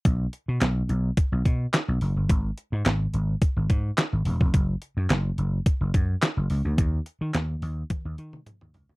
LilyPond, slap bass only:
\new Staff \with { instrumentName = "Slap bass" } { \clef bass \time 4/4 \key ces \lydian \tempo 4 = 107 b,,8 r16 b,16 b,,8 b,,8 r16 b,,16 b,8 r16 b,,16 fis,,16 g,,16 | gis,,8 r16 gis,16 gis,,8 gis,,8 r16 gis,,16 gis,8 r16 gis,,16 e,,16 f,,16 | ges,,8 r16 ges,16 ges,,8 ges,,8 r16 ges,,16 ges,8 r16 ges,,16 des,16 d,16 | ees,8 r16 ees16 ees,8 ees,8 r16 ees,16 ees8 r16 ees,16 des,16 d,16 | }